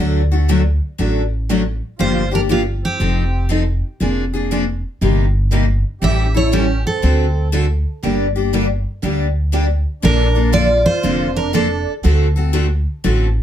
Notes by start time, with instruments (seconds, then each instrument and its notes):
Already playing: upright bass D2
0.00 steel-string acoustic guitar D3 F#3 A3 D4 F#4 A4
0.32 steel-string acoustic guitar A3 D4 F#4
0.49 steel-string acoustic guitar D3 F#3 A3 D4 F#4 A4
0.98 upright bass A1, steel-string acoustic guitar D3 F#3 A3 D4 F#4 A4
1.50 steel-string acoustic guitar D3 F#3 A3 D4 F#4 A4
1.99 upright bass G1, steel-string acoustic guitar D3 F3 A#3 D4 G4 C5, accordion F4
2.31 steel-string acoustic guitar A#3 D4 G4 A#4, accordion D4
2.49 steel-string acoustic guitar D3 F3 A#3 D4 F4 G4, accordion A#3
2.82 accordion C4, steel-string acoustic guitar G4
3.00 upright bass F1, steel-string acoustic guitar F3 C4 D#4 A4
3.49 steel-string acoustic guitar F3 C4 D#4 A4
4.00 upright bass F1, steel-string acoustic guitar F3 A#3 D4 G#4
4.33 steel-string acoustic guitar A#3 D4 G#4
4.51 steel-string acoustic guitar F3 A#3 D4 G#4
5.01 upright bass G1, steel-string acoustic guitar C3 G3 A#3 D#4 G4
5.52 steel-string acoustic guitar C3 G3 A#3 D#4 G4
6.01 upright bass A1, steel-string acoustic guitar E3 G3 C#4 E4 A4 E5, accordion G4
6.34 steel-string acoustic guitar C#4 E4 A4 C#5, accordion E4
6.51 steel-string acoustic guitar E3 G3 C#4 E4 G4 A4, accordion C#4
6.84 accordion C4, steel-string acoustic guitar A4
7.02 upright bass D2, steel-string acoustic guitar D3 A3 C4 F#4 A4
7.52 steel-string acoustic guitar D3 A3 C4 F#4 A4
8.03 upright bass G1, steel-string acoustic guitar D3 G3 A#3 D4 G4
8.36 steel-string acoustic guitar A#3 D4 G4
8.53 steel-string acoustic guitar D3 G3 A#3 D4 G4
9.03 upright bass D2, steel-string acoustic guitar D3 G3 A#3 D4 G4
9.52 steel-string acoustic guitar D3 G3 A#3 D4 G4
10.02 upright bass A#1, steel-string acoustic guitar D3 F3 A#3 D4 A4 A#4, accordion D4
10.35 steel-string acoustic guitar A#3 D4 A4
10.51 steel-string acoustic guitar D3 F3 A#3 D4 A4 D5, accordion F4
10.83 accordion F4, steel-string acoustic guitar C5
11.03 upright bass F1, steel-string acoustic guitar D3 F3 A#3 D4 A4
11.34 accordion D4, steel-string acoustic guitar A#4
11.53 steel-string acoustic guitar D3 F3 A#3 D4 A4, accordion D4
12.04 upright bass D2, steel-string acoustic guitar D3 A3 C4 F#4 A4
12.36 steel-string acoustic guitar C4 F#4 A4
12.53 steel-string acoustic guitar D3 A3 C4 F#4 A4
13.04 upright bass A1, steel-string acoustic guitar D3 A3 C4 F#4 A4